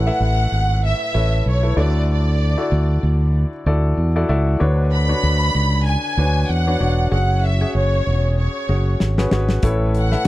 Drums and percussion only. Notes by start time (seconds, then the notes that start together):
9.00 snare
9.18 snare
9.31 snare
9.49 snare
9.63 kick, closed hi-hat
9.95 closed hi-hat
10.12 snare